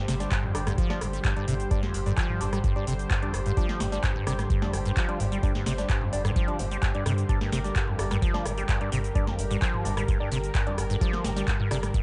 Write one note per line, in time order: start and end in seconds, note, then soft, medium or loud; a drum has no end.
0.00 12.03 D3 medium
0.00 12.03 G3 medium
0.00 12.03 G4 medium
0.00 7.28 C5 medium
0.08 0.26 G1 loud
0.08 0.15 C3 loud
0.08 snare medium
0.08 open hi-hat loud
0.08 shaker medium
0.20 0.29 G3 medium
0.20 0.29 D4 medium
0.20 0.29 D5 medium
0.20 snare soft
0.20 closed hi-hat medium
0.20 shaker soft
0.31 0.45 G2 medium
0.31 kick loud
0.31 clap loud
0.31 closed hi-hat medium
0.31 shaker soft
0.43 0.56 F2 medium
0.43 mid tom loud
0.55 0.73 G1 medium
0.55 0.61 G2 medium
0.55 0.65 G3 loud
0.55 0.65 D4 medium
0.55 0.65 D5 loud
0.55 cross-stick medium
0.55 open hi-hat loud
0.55 shaker medium
0.67 0.73 G2 loud
0.67 cross-stick medium
0.67 snare soft
0.67 closed hi-hat medium
0.67 mid tom loud
0.67 shaker soft
0.78 1.03 F3 loud
0.78 kick loud
0.78 closed hi-hat medium
0.78 shaker soft
0.90 0.99 G3 medium
0.90 0.99 D4 medium
0.90 0.99 D5 loud
0.90 snare medium
1.01 1.19 G1 medium
1.01 1.08 F2 loud
1.01 cross-stick medium
1.01 open hi-hat loud
1.01 shaker medium
1.13 1.19 G3 medium
1.13 closed hi-hat medium
1.13 shaker soft
1.24 1.34 G2 medium
1.24 kick loud
1.24 clap loud
1.24 closed hi-hat medium
1.24 shaker soft
1.36 1.46 G2 medium
1.36 1.46 G3 medium
1.36 1.46 D4 medium
1.36 1.46 D5 medium
1.36 closed hi-hat soft
1.48 1.66 G1 medium
1.48 1.54 C3 loud
1.48 mid tom medium
1.48 open hi-hat loud
1.48 shaker medium
1.60 closed hi-hat medium
1.60 shaker soft
1.71 1.84 G2 medium
1.71 1.81 G3 medium
1.71 1.81 D4 medium
1.71 1.81 D5 loud
1.71 kick loud
1.71 closed hi-hat medium
1.71 shaker soft
1.83 1.96 F2 medium
1.83 snare medium
1.94 2.12 G1 loud
1.94 2.01 G2 medium
1.94 open hi-hat loud
1.94 shaker medium
2.06 2.12 G2 loud
2.06 2.15 G3 medium
2.06 2.15 D4 medium
2.06 2.15 D5 medium
2.06 closed hi-hat medium
2.06 shaker soft
2.17 2.42 F3 loud
2.17 kick loud
2.17 clap loud
2.17 closed hi-hat medium
2.17 shaker soft
2.29 mid tom loud
2.41 2.59 G1 medium
2.41 2.47 F2 loud
2.41 2.51 G3 loud
2.41 2.51 D4 medium
2.41 2.51 D5 loud
2.41 open hi-hat loud
2.41 shaker medium
2.53 2.59 G3 medium
2.53 cross-stick medium
2.53 closed hi-hat medium
2.53 mid tom loud
2.53 shaker soft
2.64 2.74 G2 medium
2.64 kick loud
2.64 closed hi-hat medium
2.64 shaker soft
2.76 2.85 G2 medium
2.76 2.85 G3 medium
2.76 2.85 D4 medium
2.76 2.85 D5 loud
2.87 3.05 G1 medium
2.87 2.94 C3 loud
2.87 open hi-hat loud
2.87 shaker medium
2.99 closed hi-hat medium
2.99 shaker soft
3.11 3.24 G2 medium
3.11 kick loud
3.11 clap loud
3.11 closed hi-hat medium
3.11 shaker soft
3.23 3.35 F2 medium
3.23 3.32 G3 medium
3.23 3.32 D4 medium
3.23 3.32 D5 medium
3.23 closed hi-hat soft
3.34 3.52 G1 medium
3.34 3.40 G2 medium
3.34 cross-stick medium
3.34 open hi-hat loud
3.34 shaker medium
3.46 3.52 G2 loud
3.46 closed hi-hat medium
3.46 shaker soft
3.57 3.82 F3 loud
3.57 3.67 G3 medium
3.57 3.67 D4 medium
3.57 3.67 D5 loud
3.57 kick loud
3.57 closed hi-hat medium
3.57 shaker soft
3.69 snare medium
3.80 3.98 G1 loud
3.80 3.87 F2 loud
3.80 snare medium
3.80 open hi-hat loud
3.80 shaker medium
3.92 4.01 G3 medium
3.92 3.99 G3 medium
3.92 4.01 D4 medium
3.92 4.01 D5 medium
3.92 snare soft
3.92 closed hi-hat medium
3.92 shaker soft
4.04 4.13 G2 medium
4.04 kick loud
4.04 clap loud
4.04 closed hi-hat medium
4.04 shaker soft
4.16 4.25 G2 medium
4.16 mid tom loud
4.27 4.45 G1 medium
4.27 4.33 C3 loud
4.27 4.37 G3 loud
4.27 4.37 D4 medium
4.27 4.37 D5 loud
4.27 cross-stick medium
4.27 open hi-hat loud
4.27 shaker medium
4.39 cross-stick medium
4.39 snare soft
4.39 closed hi-hat medium
4.39 mid tom loud
4.39 shaker soft
4.50 4.64 G2 medium
4.50 kick loud
4.50 closed hi-hat medium
4.50 shaker soft
4.62 4.75 F2 medium
4.62 4.71 G3 medium
4.62 4.71 D4 medium
4.62 4.71 D5 loud
4.62 snare medium
4.73 4.91 G1 medium
4.73 4.80 G2 medium
4.73 cross-stick medium
4.73 open hi-hat loud
4.73 shaker medium
4.85 4.92 G2 loud
4.85 closed hi-hat medium
4.85 shaker soft
4.97 5.21 F3 loud
4.97 kick loud
4.97 clap loud
4.97 closed hi-hat medium
4.97 shaker soft
5.09 5.18 G3 medium
5.09 5.18 D4 medium
5.09 5.18 D5 medium
5.09 closed hi-hat soft
5.20 5.38 G1 medium
5.20 5.26 F2 loud
5.20 mid tom medium
5.20 open hi-hat loud
5.20 shaker medium
5.32 5.38 G3 medium
5.32 closed hi-hat medium
5.32 shaker soft
5.43 5.53 G2 medium
5.43 5.53 G3 medium
5.43 5.53 D4 medium
5.43 5.53 D5 loud
5.43 kick loud
5.43 closed hi-hat medium
5.43 shaker soft
5.55 5.64 G2 medium
5.55 snare medium
5.66 5.84 G1 loud
5.66 5.73 C3 loud
5.66 snare medium
5.66 open hi-hat loud
5.66 shaker medium
5.78 5.88 G3 medium
5.78 5.88 D4 medium
5.78 5.88 D5 medium
5.78 snare soft
5.78 closed hi-hat soft
5.78 shaker soft
5.90 6.03 G2 medium
5.90 kick loud
5.90 clap loud
5.90 closed hi-hat medium
5.90 shaker soft
6.02 6.14 F2 medium
6.02 mid tom medium
6.13 6.31 G1 medium
6.13 6.20 G2 medium
6.13 6.23 G3 loud
6.13 6.23 D4 medium
6.13 6.23 D5 loud
6.13 open hi-hat loud
6.13 shaker medium
6.25 6.31 G2 loud
6.25 cross-stick medium
6.25 closed hi-hat medium
6.25 mid tom loud
6.25 shaker soft
6.36 6.61 F3 loud
6.36 kick loud
6.36 closed hi-hat medium
6.36 shaker soft
6.48 6.57 G3 medium
6.48 6.57 D4 medium
6.48 6.57 D5 loud
6.48 closed hi-hat soft
6.59 6.77 G1 medium
6.59 6.66 F2 loud
6.59 open hi-hat loud
6.59 shaker medium
6.71 6.78 G3 medium
6.71 closed hi-hat soft
6.71 shaker soft
6.83 6.93 G2 medium
6.83 kick loud
6.83 clap loud
6.83 closed hi-hat medium
6.83 shaker soft
6.95 7.04 G2 medium
6.95 7.04 G3 medium
6.95 7.04 D4 medium
6.95 7.04 D5 medium
6.95 closed hi-hat soft
7.06 7.24 G2 loud
7.06 7.13 C3 loud
7.06 cross-stick medium
7.06 open hi-hat loud
7.06 shaker medium
7.18 closed hi-hat medium
7.18 shaker soft
7.29 7.39 G2 medium
7.29 7.39 G3 medium
7.29 7.39 D4 medium
7.29 12.03 A#4 medium
7.29 7.39 D5 medium
7.29 kick loud
7.29 closed hi-hat medium
7.29 shaker soft
7.41 7.50 G2 medium
7.41 snare medium
7.52 7.70 G1 loud
7.52 7.59 C3 loud
7.52 snare medium
7.52 open hi-hat loud
7.52 shaker medium
7.64 7.74 G3 medium
7.64 7.74 D4 medium
7.64 7.74 D5 medium
7.64 snare soft
7.64 closed hi-hat medium
7.64 shaker soft
7.76 7.89 G2 medium
7.76 kick loud
7.76 clap loud
7.76 closed hi-hat medium
7.76 shaker soft
7.88 8.00 F2 medium
7.88 mid tom medium
7.99 8.17 G1 medium
7.99 8.06 G2 medium
7.99 8.09 G3 medium
7.99 8.09 D4 medium
7.99 8.09 D5 loud
7.99 cross-stick medium
7.99 open hi-hat loud
7.99 shaker medium
8.11 8.17 G2 loud
8.11 cross-stick medium
8.11 snare soft
8.11 closed hi-hat medium
8.11 mid tom loud
8.11 shaker soft
8.22 8.47 F3 loud
8.22 kick loud
8.22 closed hi-hat medium
8.22 shaker soft
8.34 8.43 G3 medium
8.34 8.43 D4 medium
8.34 8.43 D5 medium
8.34 snare medium
8.45 8.63 G1 medium
8.45 8.52 F2 loud
8.45 cross-stick medium
8.45 open hi-hat loud
8.45 shaker medium
8.57 8.64 G3 medium
8.57 closed hi-hat medium
8.57 shaker soft
8.69 8.79 G2 medium
8.69 kick loud
8.69 clap loud
8.69 closed hi-hat medium
8.69 shaker soft
8.81 8.90 G2 medium
8.81 8.90 G3 medium
8.81 8.90 D4 medium
8.81 8.90 D5 loud
8.81 closed hi-hat soft
8.92 9.10 G1 medium
8.92 8.99 C3 loud
8.92 mid tom medium
8.92 open hi-hat loud
8.92 shaker medium
9.04 closed hi-hat medium
9.04 shaker soft
9.15 9.29 G2 medium
9.15 9.25 G3 medium
9.15 9.25 D4 medium
9.15 9.25 D5 loud
9.15 kick loud
9.15 closed hi-hat medium
9.15 shaker soft
9.27 9.40 F2 medium
9.27 snare medium
9.38 9.56 G1 loud
9.38 9.45 G2 medium
9.38 open hi-hat loud
9.38 shaker medium
9.50 9.57 G2 loud
9.50 9.60 G3 medium
9.50 9.60 D4 medium
9.50 9.60 D5 medium
9.50 closed hi-hat medium
9.50 shaker soft
9.62 9.86 F3 loud
9.62 kick loud
9.62 clap loud
9.62 closed hi-hat medium
9.62 shaker soft
9.74 mid tom medium
9.85 10.03 G1 medium
9.85 9.92 F2 loud
9.85 9.95 G3 loud
9.85 9.95 D4 medium
9.85 9.95 D5 loud
9.85 open hi-hat loud
9.85 shaker medium
9.97 10.03 G3 medium
9.97 cross-stick medium
9.97 closed hi-hat medium
9.97 mid tom medium
9.97 shaker soft
10.08 10.18 G2 medium
10.08 kick loud
10.08 closed hi-hat medium
10.08 shaker soft
10.20 10.30 G2 medium
10.20 10.29 G3 medium
10.20 10.29 D4 medium
10.20 10.29 D5 loud
10.31 10.49 G1 medium
10.31 10.38 C3 loud
10.31 open hi-hat loud
10.31 shaker medium
10.44 closed hi-hat medium
10.44 shaker soft
10.55 10.68 G2 medium
10.55 kick loud
10.55 clap loud
10.55 closed hi-hat medium
10.55 shaker soft
10.67 10.80 F2 medium
10.67 10.76 G3 medium
10.67 10.76 D4 medium
10.67 10.76 D5 medium
10.67 closed hi-hat soft
10.78 10.96 G1 medium
10.78 10.85 G2 medium
10.78 cross-stick medium
10.78 open hi-hat loud
10.78 shaker medium
10.90 10.96 G2 loud
10.90 closed hi-hat medium
10.90 shaker soft
11.01 11.26 F3 loud
11.01 11.11 G3 medium
11.01 11.11 D4 medium
11.01 11.11 D5 medium
11.01 kick loud
11.01 closed hi-hat medium
11.01 shaker soft
11.13 snare medium
11.25 11.42 G1 loud
11.25 11.31 F2 loud
11.25 snare medium
11.25 open hi-hat loud
11.25 shaker medium
11.37 11.43 G3 medium
11.37 11.46 G3 medium
11.37 11.46 D4 medium
11.37 11.46 D5 medium
11.37 snare soft
11.37 closed hi-hat medium
11.37 shaker soft
11.48 11.58 G2 medium
11.48 kick loud
11.48 clap loud
11.48 closed hi-hat medium
11.48 shaker soft
11.60 11.69 G2 medium
11.60 mid tom medium
11.71 11.89 G1 medium
11.71 11.78 C3 loud
11.71 11.81 G3 loud
11.71 11.81 D4 medium
11.71 11.81 D5 loud
11.71 cross-stick medium
11.71 open hi-hat loud
11.71 shaker medium
11.83 cross-stick medium
11.83 snare soft
11.83 closed hi-hat medium
11.83 mid tom medium
11.83 shaker soft
11.94 12.03 G2 medium
11.94 kick loud
11.94 closed hi-hat medium
11.94 shaker soft